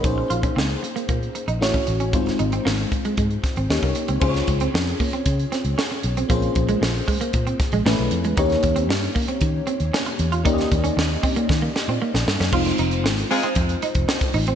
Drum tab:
CC |----------------|----------------|x---------------|----------------|
HH |x-xx-xxxxxxx--xx|xxxx--xxxxxx-xxx|-xxx-xoxxxxx--xx|xxxx-xoxxxxx-xxx|
SD |----o-------o---|-o--o-----o-o---|-o--o-----o-o---|----o-----o-o---|
BD |o--o----o----o--|o-----o-o-o--o--|o-o---o-o-------|o-o---o-o-o-----|

CC |----------------|----------------|x---------------|
HH |xxxx-xoxx-xx-xxx|xxxx--ox--------|-xxx-xoxxxxx-xox|
SD |-o--o-------o---|-o--o---o-o--ooo|-o--o-------o---|
BD |o-o---o-o-------|o-o---o-o-------|o-------o--o-o--|